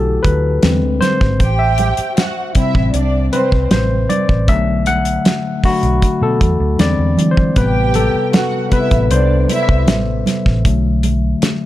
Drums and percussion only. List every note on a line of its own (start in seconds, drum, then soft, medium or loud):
0.24 kick medium
0.24 closed hi-hat medium
0.24 muted conga soft
0.63 snare loud
0.63 closed hi-hat medium
0.63 high conga medium
1.01 snare soft
1.01 closed hi-hat medium
1.01 high conga medium
1.21 kick medium
1.21 snare soft
1.40 kick loud
1.40 closed hi-hat medium
1.78 closed hi-hat medium
1.78 muted conga soft
1.97 closed hi-hat medium
2.17 snare medium
2.17 closed hi-hat medium
2.17 high conga medium
2.55 kick medium
2.55 closed hi-hat medium
2.75 kick medium
2.94 closed hi-hat medium
2.94 muted conga soft
3.33 closed hi-hat medium
3.33 muted conga soft
3.52 kick medium
3.71 snare loud
3.71 closed hi-hat medium
3.71 high conga medium
4.10 closed hi-hat medium
4.10 high conga medium
4.29 kick medium
4.48 kick medium
4.48 closed hi-hat medium
4.86 closed hi-hat medium
4.86 muted conga soft
5.05 closed hi-hat medium
5.25 snare medium
5.25 closed hi-hat medium
5.25 high conga medium
5.64 kick medium
5.64 open hi-hat medium
5.83 closed hi-hat medium
6.02 kick medium
6.02 closed hi-hat medium
6.02 muted conga soft
6.41 kick medium
6.41 closed hi-hat medium
6.41 muted conga soft
6.79 snare loud
6.79 closed hi-hat medium
6.79 high conga medium
7.18 closed hi-hat medium
7.18 high conga medium
7.37 kick medium
7.37 high conga soft
7.56 kick medium
7.56 closed hi-hat medium
7.94 closed hi-hat medium
7.94 muted conga medium
8.33 snare medium
8.33 closed hi-hat medium
8.33 high conga medium
8.72 kick medium
8.72 closed hi-hat medium
8.91 kick medium
8.91 closed hi-hat medium
9.11 closed hi-hat medium
9.11 muted conga soft
9.49 closed hi-hat medium
9.49 muted conga soft
9.69 kick medium
9.87 snare loud
9.87 closed hi-hat loud
9.87 high conga medium
10.26 snare soft
10.26 closed hi-hat medium
10.26 high conga medium
10.46 kick medium
10.46 snare soft
10.65 kick loud
10.65 closed hi-hat medium
11.03 closed hi-hat medium
11.03 muted conga soft
11.42 snare medium
11.42 closed hi-hat medium
11.42 high conga medium